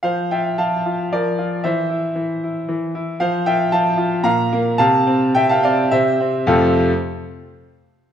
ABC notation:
X:1
M:3/4
L:1/16
Q:1/4=111
K:F
V:1 name="Grand piano"
[cf]2 [eg]2 [fa]4 [Bd]4 | [ce]8- [ce]2 z2 | [cf]2 [eg]2 [fa]4 [fb]4 | [fa]4 [eg] [fa] [df]2 [ce]4 |
[F,,C,A,CFAf]2 z8 z2 |]
V:2 name="Grand piano" clef=bass
F,2 F2 F,2 F2 F,2 F2 | E,2 E2 E,2 E2 E,2 E2 | F,2 F2 F,2 F2 B,,2 B,2 | C,2 C2 C,2 C2 C,2 C2 |
z12 |]